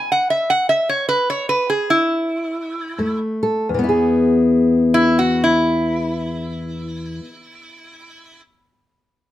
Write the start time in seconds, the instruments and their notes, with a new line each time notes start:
Already playing: resonator guitar played with a steel bar G#5
0.12 resonator guitar played with a steel bar F#5
0.30 resonator guitar played with a steel bar E5
0.50 resonator guitar played with a steel bar F#5
0.69 resonator guitar played with a steel bar E5
0.89 resonator guitar played with a steel bar C#5
1.09 resonator guitar played with a steel bar B4
1.30 resonator guitar played with a steel bar C#5
1.49 resonator guitar played with a steel bar B4
1.70 resonator guitar played with a steel bar G#4
1.90 resonator guitar played with a steel bar E4
2.98 steel-string acoustic guitar F2 A3
3.43 steel-string acoustic guitar A4
3.69 steel-string acoustic guitar E2
3.74 steel-string acoustic guitar E3
3.79 steel-string acoustic guitar B3
3.84 steel-string acoustic guitar E4
3.89 steel-string acoustic guitar G#4
4.94 resonator guitar played with a steel bar E4
5.19 resonator guitar played with a steel bar F#4
5.44 resonator guitar played with a steel bar E4